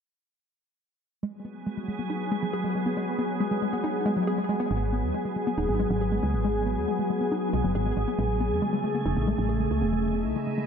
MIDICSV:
0, 0, Header, 1, 4, 480
1, 0, Start_track
1, 0, Tempo, 434783
1, 1358, Time_signature, 4, 2, 24, 8
1, 11774, End_track
2, 0, Start_track
2, 0, Title_t, "Ambient pad"
2, 0, Program_c, 0, 92
2, 1357, Note_on_c, 0, 68, 84
2, 1358, Note_on_c, 0, 54, 80
2, 1358, Note_on_c, 0, 59, 72
2, 5159, Note_off_c, 0, 54, 0
2, 5159, Note_off_c, 0, 68, 0
2, 5160, Note_off_c, 0, 59, 0
2, 5198, Note_on_c, 0, 54, 78
2, 5198, Note_on_c, 0, 59, 71
2, 5198, Note_on_c, 0, 68, 89
2, 8999, Note_off_c, 0, 59, 0
2, 9000, Note_off_c, 0, 54, 0
2, 9036, Note_on_c, 0, 49, 82
2, 9037, Note_on_c, 0, 57, 72
2, 10914, Note_off_c, 0, 68, 0
2, 10938, Note_off_c, 0, 49, 0
2, 10938, Note_off_c, 0, 57, 0
2, 10959, Note_on_c, 0, 56, 72
2, 10959, Note_on_c, 0, 63, 83
2, 10959, Note_on_c, 0, 64, 91
2, 11774, Note_off_c, 0, 56, 0
2, 11774, Note_off_c, 0, 63, 0
2, 11774, Note_off_c, 0, 64, 0
2, 11774, End_track
3, 0, Start_track
3, 0, Title_t, "Synth arpeggio sound"
3, 0, Program_c, 1, 84
3, 1358, Note_on_c, 1, 56, 85
3, 1408, Note_off_c, 1, 56, 0
3, 1598, Note_on_c, 1, 59, 73
3, 1681, Note_off_c, 1, 59, 0
3, 1838, Note_on_c, 1, 56, 84
3, 1888, Note_off_c, 1, 56, 0
3, 1958, Note_on_c, 1, 56, 76
3, 2065, Note_off_c, 1, 56, 0
3, 2078, Note_on_c, 1, 56, 75
3, 2192, Note_off_c, 1, 56, 0
3, 2198, Note_on_c, 1, 59, 74
3, 2281, Note_off_c, 1, 59, 0
3, 2318, Note_on_c, 1, 63, 80
3, 2368, Note_off_c, 1, 63, 0
3, 2558, Note_on_c, 1, 56, 96
3, 2672, Note_off_c, 1, 56, 0
3, 2678, Note_on_c, 1, 54, 78
3, 2761, Note_off_c, 1, 54, 0
3, 2798, Note_on_c, 1, 68, 84
3, 2881, Note_off_c, 1, 68, 0
3, 2917, Note_on_c, 1, 56, 76
3, 3025, Note_off_c, 1, 56, 0
3, 3038, Note_on_c, 1, 56, 72
3, 3152, Note_off_c, 1, 56, 0
3, 3157, Note_on_c, 1, 59, 71
3, 3241, Note_off_c, 1, 59, 0
3, 3278, Note_on_c, 1, 56, 79
3, 3328, Note_off_c, 1, 56, 0
3, 3518, Note_on_c, 1, 59, 74
3, 3601, Note_off_c, 1, 59, 0
3, 3758, Note_on_c, 1, 56, 83
3, 3808, Note_off_c, 1, 56, 0
3, 3878, Note_on_c, 1, 56, 76
3, 3985, Note_off_c, 1, 56, 0
3, 3998, Note_on_c, 1, 56, 77
3, 4112, Note_off_c, 1, 56, 0
3, 4118, Note_on_c, 1, 59, 76
3, 4201, Note_off_c, 1, 59, 0
3, 4239, Note_on_c, 1, 63, 81
3, 4288, Note_off_c, 1, 63, 0
3, 4478, Note_on_c, 1, 56, 94
3, 4592, Note_off_c, 1, 56, 0
3, 4599, Note_on_c, 1, 54, 75
3, 4682, Note_off_c, 1, 54, 0
3, 4718, Note_on_c, 1, 68, 80
3, 4801, Note_off_c, 1, 68, 0
3, 4838, Note_on_c, 1, 56, 72
3, 4945, Note_off_c, 1, 56, 0
3, 4958, Note_on_c, 1, 56, 77
3, 5072, Note_off_c, 1, 56, 0
3, 5078, Note_on_c, 1, 59, 78
3, 5161, Note_off_c, 1, 59, 0
3, 5198, Note_on_c, 1, 56, 84
3, 5248, Note_off_c, 1, 56, 0
3, 5438, Note_on_c, 1, 59, 75
3, 5521, Note_off_c, 1, 59, 0
3, 5677, Note_on_c, 1, 56, 86
3, 5728, Note_off_c, 1, 56, 0
3, 5798, Note_on_c, 1, 56, 77
3, 5905, Note_off_c, 1, 56, 0
3, 5919, Note_on_c, 1, 56, 78
3, 6032, Note_off_c, 1, 56, 0
3, 6038, Note_on_c, 1, 59, 78
3, 6121, Note_off_c, 1, 59, 0
3, 6158, Note_on_c, 1, 63, 80
3, 6208, Note_off_c, 1, 63, 0
3, 6398, Note_on_c, 1, 56, 98
3, 6512, Note_off_c, 1, 56, 0
3, 6518, Note_on_c, 1, 54, 76
3, 6601, Note_off_c, 1, 54, 0
3, 6638, Note_on_c, 1, 68, 81
3, 6721, Note_off_c, 1, 68, 0
3, 6758, Note_on_c, 1, 56, 78
3, 6864, Note_off_c, 1, 56, 0
3, 6877, Note_on_c, 1, 56, 72
3, 6992, Note_off_c, 1, 56, 0
3, 6997, Note_on_c, 1, 59, 74
3, 7081, Note_off_c, 1, 59, 0
3, 7118, Note_on_c, 1, 56, 85
3, 7168, Note_off_c, 1, 56, 0
3, 7358, Note_on_c, 1, 59, 70
3, 7441, Note_off_c, 1, 59, 0
3, 7598, Note_on_c, 1, 56, 85
3, 7648, Note_off_c, 1, 56, 0
3, 7718, Note_on_c, 1, 56, 75
3, 7825, Note_off_c, 1, 56, 0
3, 7838, Note_on_c, 1, 56, 78
3, 7952, Note_off_c, 1, 56, 0
3, 7958, Note_on_c, 1, 59, 78
3, 8041, Note_off_c, 1, 59, 0
3, 8078, Note_on_c, 1, 63, 82
3, 8128, Note_off_c, 1, 63, 0
3, 8317, Note_on_c, 1, 56, 96
3, 8432, Note_off_c, 1, 56, 0
3, 8437, Note_on_c, 1, 54, 77
3, 8521, Note_off_c, 1, 54, 0
3, 8557, Note_on_c, 1, 68, 80
3, 8641, Note_off_c, 1, 68, 0
3, 8677, Note_on_c, 1, 56, 76
3, 8784, Note_off_c, 1, 56, 0
3, 8797, Note_on_c, 1, 56, 77
3, 8912, Note_off_c, 1, 56, 0
3, 8918, Note_on_c, 1, 59, 78
3, 9001, Note_off_c, 1, 59, 0
3, 9037, Note_on_c, 1, 56, 86
3, 9087, Note_off_c, 1, 56, 0
3, 9277, Note_on_c, 1, 59, 74
3, 9361, Note_off_c, 1, 59, 0
3, 9518, Note_on_c, 1, 56, 87
3, 9568, Note_off_c, 1, 56, 0
3, 9637, Note_on_c, 1, 56, 75
3, 9752, Note_off_c, 1, 56, 0
3, 9758, Note_on_c, 1, 57, 75
3, 9872, Note_off_c, 1, 57, 0
3, 9878, Note_on_c, 1, 59, 80
3, 9961, Note_off_c, 1, 59, 0
3, 9997, Note_on_c, 1, 63, 79
3, 10048, Note_off_c, 1, 63, 0
3, 10237, Note_on_c, 1, 56, 95
3, 10352, Note_off_c, 1, 56, 0
3, 10357, Note_on_c, 1, 54, 76
3, 10441, Note_off_c, 1, 54, 0
3, 10477, Note_on_c, 1, 68, 79
3, 10561, Note_off_c, 1, 68, 0
3, 10597, Note_on_c, 1, 56, 76
3, 10712, Note_off_c, 1, 56, 0
3, 10717, Note_on_c, 1, 57, 73
3, 10832, Note_off_c, 1, 57, 0
3, 10837, Note_on_c, 1, 59, 77
3, 10921, Note_off_c, 1, 59, 0
3, 10958, Note_on_c, 1, 56, 84
3, 11008, Note_off_c, 1, 56, 0
3, 11197, Note_on_c, 1, 59, 73
3, 11281, Note_off_c, 1, 59, 0
3, 11437, Note_on_c, 1, 56, 83
3, 11488, Note_off_c, 1, 56, 0
3, 11558, Note_on_c, 1, 56, 74
3, 11665, Note_off_c, 1, 56, 0
3, 11678, Note_on_c, 1, 56, 78
3, 11774, Note_off_c, 1, 56, 0
3, 11774, End_track
4, 0, Start_track
4, 0, Title_t, "FM bass"
4, 0, Program_c, 2, 39
4, 5199, Note_on_c, 2, 32, 98
4, 5558, Note_on_c, 2, 39, 82
4, 5575, Note_off_c, 2, 32, 0
4, 5655, Note_off_c, 2, 39, 0
4, 6158, Note_on_c, 2, 27, 82
4, 6255, Note_off_c, 2, 27, 0
4, 6278, Note_on_c, 2, 32, 80
4, 6471, Note_off_c, 2, 32, 0
4, 6518, Note_on_c, 2, 32, 107
4, 6840, Note_off_c, 2, 32, 0
4, 6878, Note_on_c, 2, 37, 80
4, 6998, Note_on_c, 2, 32, 104
4, 7015, Note_off_c, 2, 37, 0
4, 7478, Note_on_c, 2, 39, 81
4, 7495, Note_off_c, 2, 32, 0
4, 7575, Note_off_c, 2, 39, 0
4, 8319, Note_on_c, 2, 35, 84
4, 8415, Note_off_c, 2, 35, 0
4, 8438, Note_on_c, 2, 30, 85
4, 8535, Note_off_c, 2, 30, 0
4, 8558, Note_on_c, 2, 32, 98
4, 8751, Note_off_c, 2, 32, 0
4, 8798, Note_on_c, 2, 32, 84
4, 8895, Note_off_c, 2, 32, 0
4, 9038, Note_on_c, 2, 33, 94
4, 9399, Note_on_c, 2, 40, 81
4, 9416, Note_off_c, 2, 33, 0
4, 9495, Note_off_c, 2, 40, 0
4, 9998, Note_on_c, 2, 28, 84
4, 10095, Note_off_c, 2, 28, 0
4, 10119, Note_on_c, 2, 33, 86
4, 10311, Note_off_c, 2, 33, 0
4, 10359, Note_on_c, 2, 33, 103
4, 10681, Note_off_c, 2, 33, 0
4, 10719, Note_on_c, 2, 37, 78
4, 10839, Note_on_c, 2, 28, 103
4, 10855, Note_off_c, 2, 37, 0
4, 11319, Note_on_c, 2, 35, 84
4, 11335, Note_off_c, 2, 28, 0
4, 11415, Note_off_c, 2, 35, 0
4, 11774, End_track
0, 0, End_of_file